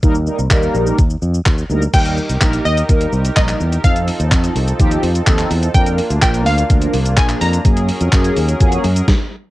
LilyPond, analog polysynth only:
\new Staff \with { instrumentName = "Analog polysynth" } { \time 4/4 \key ees \major \tempo 4 = 126 <g bes ees' bes'>16 r16 <g bes ees' bes'>16 r16 <g bes ees' bes'>4 r4. <g bes ees' bes'>16 r16 | <g bes ees' bes'>8 r8 <g bes ees' bes'>8 r8 <g bes ees' bes'>8 r8 <g bes ees' bes'>8 r8 | <f c' ees' a'>8 r8 <f c' ees' a'>8 r8 <f c' ees' g'>8 r8 <f c' ees' a'>8 r8 | <f bes d' bes'>8 r8 <f bes d' bes'>8 r8 <f bes d' bes'>8 r8 <f bes d' aes'>8 r8 |
<ges bes des' aes'>8 r8 <ges bes des' aes'>8 r8 <ges bes des' aes'>8 r4. | }